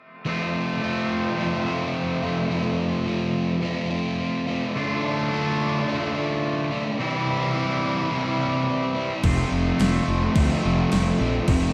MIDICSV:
0, 0, Header, 1, 5, 480
1, 0, Start_track
1, 0, Key_signature, -1, "major"
1, 0, Tempo, 560748
1, 224, Time_signature, 4, 2, 24, 8
1, 10043, End_track
2, 0, Start_track
2, 0, Title_t, "Overdriven electric guitar"
2, 0, Program_c, 0, 29
2, 215, Note_on_c, 0, 53, 93
2, 222, Note_on_c, 0, 57, 86
2, 229, Note_on_c, 0, 60, 104
2, 232, Note_on_c, 0, 65, 99
2, 695, Note_off_c, 0, 53, 0
2, 698, Note_on_c, 0, 53, 78
2, 704, Note_off_c, 0, 57, 0
2, 707, Note_on_c, 0, 57, 70
2, 708, Note_off_c, 0, 60, 0
2, 711, Note_on_c, 0, 60, 80
2, 713, Note_off_c, 0, 65, 0
2, 716, Note_on_c, 0, 65, 88
2, 1175, Note_off_c, 0, 53, 0
2, 1178, Note_on_c, 0, 53, 94
2, 1182, Note_off_c, 0, 57, 0
2, 1183, Note_off_c, 0, 60, 0
2, 1185, Note_on_c, 0, 57, 91
2, 1193, Note_off_c, 0, 65, 0
2, 1193, Note_on_c, 0, 60, 96
2, 1196, Note_on_c, 0, 65, 92
2, 1417, Note_off_c, 0, 65, 0
2, 1419, Note_off_c, 0, 60, 0
2, 1421, Note_on_c, 0, 65, 76
2, 1429, Note_on_c, 0, 60, 65
2, 1434, Note_off_c, 0, 57, 0
2, 1438, Note_on_c, 0, 57, 62
2, 1900, Note_off_c, 0, 65, 0
2, 1903, Note_on_c, 0, 65, 73
2, 1906, Note_off_c, 0, 60, 0
2, 1916, Note_on_c, 0, 60, 55
2, 1917, Note_off_c, 0, 57, 0
2, 1920, Note_on_c, 0, 57, 50
2, 2132, Note_off_c, 0, 53, 0
2, 2136, Note_on_c, 0, 53, 89
2, 2139, Note_off_c, 0, 57, 0
2, 2140, Note_off_c, 0, 60, 0
2, 2142, Note_on_c, 0, 57, 100
2, 2150, Note_off_c, 0, 65, 0
2, 2150, Note_on_c, 0, 60, 104
2, 2153, Note_on_c, 0, 65, 105
2, 2616, Note_off_c, 0, 53, 0
2, 2620, Note_on_c, 0, 53, 85
2, 2621, Note_off_c, 0, 57, 0
2, 2624, Note_off_c, 0, 60, 0
2, 2625, Note_on_c, 0, 57, 73
2, 2634, Note_on_c, 0, 60, 75
2, 2635, Note_off_c, 0, 65, 0
2, 2639, Note_on_c, 0, 65, 79
2, 3089, Note_off_c, 0, 53, 0
2, 3097, Note_off_c, 0, 57, 0
2, 3099, Note_on_c, 0, 53, 97
2, 3102, Note_off_c, 0, 60, 0
2, 3107, Note_on_c, 0, 57, 93
2, 3109, Note_off_c, 0, 65, 0
2, 3113, Note_on_c, 0, 60, 96
2, 3119, Note_on_c, 0, 65, 98
2, 3331, Note_off_c, 0, 65, 0
2, 3339, Note_off_c, 0, 60, 0
2, 3342, Note_on_c, 0, 65, 70
2, 3348, Note_off_c, 0, 57, 0
2, 3350, Note_on_c, 0, 60, 72
2, 3358, Note_on_c, 0, 57, 62
2, 3583, Note_off_c, 0, 53, 0
2, 3815, Note_off_c, 0, 65, 0
2, 3825, Note_on_c, 0, 65, 65
2, 3826, Note_off_c, 0, 60, 0
2, 3831, Note_off_c, 0, 57, 0
2, 3836, Note_on_c, 0, 60, 62
2, 3841, Note_on_c, 0, 57, 58
2, 4052, Note_off_c, 0, 65, 0
2, 4057, Note_off_c, 0, 60, 0
2, 4060, Note_off_c, 0, 57, 0
2, 4069, Note_on_c, 0, 50, 105
2, 4073, Note_on_c, 0, 57, 110
2, 4080, Note_on_c, 0, 62, 96
2, 4084, Note_on_c, 0, 65, 105
2, 4534, Note_off_c, 0, 50, 0
2, 4544, Note_off_c, 0, 57, 0
2, 4544, Note_on_c, 0, 50, 70
2, 4552, Note_off_c, 0, 65, 0
2, 4554, Note_on_c, 0, 57, 81
2, 4555, Note_off_c, 0, 62, 0
2, 4558, Note_on_c, 0, 62, 82
2, 4563, Note_on_c, 0, 65, 82
2, 5015, Note_off_c, 0, 50, 0
2, 5022, Note_off_c, 0, 57, 0
2, 5026, Note_on_c, 0, 50, 83
2, 5027, Note_off_c, 0, 62, 0
2, 5032, Note_on_c, 0, 57, 84
2, 5034, Note_off_c, 0, 65, 0
2, 5037, Note_on_c, 0, 62, 88
2, 5045, Note_on_c, 0, 65, 96
2, 5252, Note_off_c, 0, 65, 0
2, 5263, Note_off_c, 0, 62, 0
2, 5263, Note_on_c, 0, 65, 76
2, 5271, Note_off_c, 0, 57, 0
2, 5273, Note_on_c, 0, 62, 71
2, 5281, Note_on_c, 0, 57, 66
2, 5507, Note_off_c, 0, 50, 0
2, 5731, Note_off_c, 0, 65, 0
2, 5741, Note_off_c, 0, 62, 0
2, 5741, Note_on_c, 0, 65, 62
2, 5746, Note_off_c, 0, 57, 0
2, 5751, Note_on_c, 0, 62, 66
2, 5756, Note_on_c, 0, 57, 57
2, 5970, Note_off_c, 0, 65, 0
2, 5975, Note_off_c, 0, 62, 0
2, 5978, Note_off_c, 0, 57, 0
2, 5982, Note_on_c, 0, 48, 90
2, 5987, Note_on_c, 0, 52, 83
2, 5990, Note_on_c, 0, 55, 103
2, 5997, Note_on_c, 0, 60, 93
2, 6000, Note_on_c, 0, 64, 102
2, 6450, Note_off_c, 0, 52, 0
2, 6457, Note_off_c, 0, 55, 0
2, 6460, Note_on_c, 0, 52, 76
2, 6466, Note_off_c, 0, 64, 0
2, 6467, Note_on_c, 0, 55, 75
2, 6471, Note_off_c, 0, 60, 0
2, 6475, Note_on_c, 0, 60, 88
2, 6476, Note_on_c, 0, 64, 77
2, 6705, Note_off_c, 0, 48, 0
2, 6937, Note_off_c, 0, 52, 0
2, 6940, Note_off_c, 0, 55, 0
2, 6942, Note_on_c, 0, 48, 95
2, 6948, Note_on_c, 0, 52, 87
2, 6950, Note_off_c, 0, 64, 0
2, 6950, Note_on_c, 0, 55, 100
2, 6951, Note_off_c, 0, 60, 0
2, 6955, Note_on_c, 0, 60, 91
2, 6960, Note_on_c, 0, 64, 93
2, 7170, Note_off_c, 0, 64, 0
2, 7180, Note_on_c, 0, 64, 78
2, 7187, Note_off_c, 0, 55, 0
2, 7187, Note_off_c, 0, 60, 0
2, 7190, Note_on_c, 0, 60, 66
2, 7197, Note_on_c, 0, 55, 62
2, 7425, Note_off_c, 0, 48, 0
2, 7428, Note_off_c, 0, 52, 0
2, 7646, Note_off_c, 0, 64, 0
2, 7657, Note_on_c, 0, 64, 64
2, 7660, Note_off_c, 0, 60, 0
2, 7663, Note_off_c, 0, 55, 0
2, 7663, Note_on_c, 0, 60, 54
2, 7673, Note_on_c, 0, 55, 52
2, 7888, Note_off_c, 0, 64, 0
2, 7896, Note_off_c, 0, 55, 0
2, 7902, Note_on_c, 0, 41, 90
2, 7904, Note_on_c, 0, 48, 86
2, 7907, Note_on_c, 0, 53, 90
2, 7908, Note_off_c, 0, 60, 0
2, 7910, Note_on_c, 0, 57, 88
2, 7911, Note_on_c, 0, 60, 86
2, 7914, Note_on_c, 0, 65, 107
2, 8378, Note_off_c, 0, 53, 0
2, 8382, Note_on_c, 0, 53, 77
2, 8384, Note_off_c, 0, 57, 0
2, 8387, Note_on_c, 0, 57, 69
2, 8389, Note_off_c, 0, 60, 0
2, 8392, Note_on_c, 0, 60, 81
2, 8394, Note_off_c, 0, 65, 0
2, 8397, Note_on_c, 0, 65, 82
2, 8625, Note_off_c, 0, 48, 0
2, 8859, Note_off_c, 0, 41, 0
2, 8863, Note_on_c, 0, 41, 93
2, 8866, Note_off_c, 0, 53, 0
2, 8866, Note_off_c, 0, 60, 0
2, 8866, Note_on_c, 0, 48, 82
2, 8869, Note_on_c, 0, 53, 92
2, 8870, Note_off_c, 0, 57, 0
2, 8874, Note_on_c, 0, 57, 102
2, 8876, Note_off_c, 0, 65, 0
2, 8877, Note_on_c, 0, 60, 106
2, 8880, Note_on_c, 0, 65, 106
2, 9097, Note_off_c, 0, 65, 0
2, 9098, Note_off_c, 0, 60, 0
2, 9100, Note_on_c, 0, 65, 82
2, 9109, Note_on_c, 0, 60, 74
2, 9111, Note_off_c, 0, 57, 0
2, 9114, Note_on_c, 0, 57, 73
2, 9116, Note_off_c, 0, 53, 0
2, 9119, Note_on_c, 0, 53, 63
2, 9344, Note_off_c, 0, 41, 0
2, 9346, Note_off_c, 0, 48, 0
2, 9572, Note_off_c, 0, 65, 0
2, 9575, Note_on_c, 0, 65, 58
2, 9576, Note_off_c, 0, 60, 0
2, 9586, Note_off_c, 0, 57, 0
2, 9586, Note_on_c, 0, 60, 57
2, 9589, Note_on_c, 0, 57, 52
2, 9590, Note_off_c, 0, 53, 0
2, 9593, Note_on_c, 0, 53, 55
2, 9823, Note_on_c, 0, 41, 104
2, 9824, Note_off_c, 0, 60, 0
2, 9825, Note_on_c, 0, 48, 93
2, 9826, Note_off_c, 0, 53, 0
2, 9830, Note_on_c, 0, 53, 97
2, 9831, Note_off_c, 0, 57, 0
2, 9834, Note_off_c, 0, 65, 0
2, 9834, Note_on_c, 0, 60, 92
2, 9835, Note_on_c, 0, 57, 87
2, 9837, Note_on_c, 0, 65, 111
2, 10043, Note_off_c, 0, 41, 0
2, 10043, Note_off_c, 0, 48, 0
2, 10043, Note_off_c, 0, 53, 0
2, 10043, Note_off_c, 0, 57, 0
2, 10043, Note_off_c, 0, 60, 0
2, 10043, Note_off_c, 0, 65, 0
2, 10043, End_track
3, 0, Start_track
3, 0, Title_t, "Overdriven electric guitar"
3, 0, Program_c, 1, 29
3, 221, Note_on_c, 1, 41, 74
3, 228, Note_on_c, 1, 48, 73
3, 4065, Note_off_c, 1, 41, 0
3, 4069, Note_off_c, 1, 48, 0
3, 10043, End_track
4, 0, Start_track
4, 0, Title_t, "Fingered electric bass"
4, 0, Program_c, 2, 33
4, 7911, Note_on_c, 2, 29, 102
4, 8072, Note_off_c, 2, 29, 0
4, 8145, Note_on_c, 2, 29, 84
4, 8309, Note_off_c, 2, 29, 0
4, 8386, Note_on_c, 2, 29, 80
4, 8549, Note_off_c, 2, 29, 0
4, 8628, Note_on_c, 2, 29, 90
4, 8790, Note_off_c, 2, 29, 0
4, 8866, Note_on_c, 2, 38, 91
4, 9029, Note_off_c, 2, 38, 0
4, 9119, Note_on_c, 2, 29, 80
4, 9277, Note_off_c, 2, 29, 0
4, 9356, Note_on_c, 2, 29, 82
4, 9515, Note_off_c, 2, 29, 0
4, 9595, Note_on_c, 2, 34, 98
4, 9755, Note_off_c, 2, 34, 0
4, 9829, Note_on_c, 2, 29, 103
4, 9990, Note_off_c, 2, 29, 0
4, 10043, End_track
5, 0, Start_track
5, 0, Title_t, "Drums"
5, 7905, Note_on_c, 9, 49, 57
5, 7907, Note_on_c, 9, 36, 95
5, 7991, Note_off_c, 9, 49, 0
5, 7992, Note_off_c, 9, 36, 0
5, 8385, Note_on_c, 9, 49, 54
5, 8395, Note_on_c, 9, 38, 111
5, 8471, Note_off_c, 9, 49, 0
5, 8480, Note_off_c, 9, 38, 0
5, 8864, Note_on_c, 9, 49, 57
5, 8865, Note_on_c, 9, 36, 105
5, 8950, Note_off_c, 9, 49, 0
5, 8951, Note_off_c, 9, 36, 0
5, 9345, Note_on_c, 9, 49, 57
5, 9354, Note_on_c, 9, 38, 92
5, 9431, Note_off_c, 9, 49, 0
5, 9440, Note_off_c, 9, 38, 0
5, 9825, Note_on_c, 9, 49, 62
5, 9827, Note_on_c, 9, 36, 96
5, 9910, Note_off_c, 9, 49, 0
5, 9912, Note_off_c, 9, 36, 0
5, 10043, End_track
0, 0, End_of_file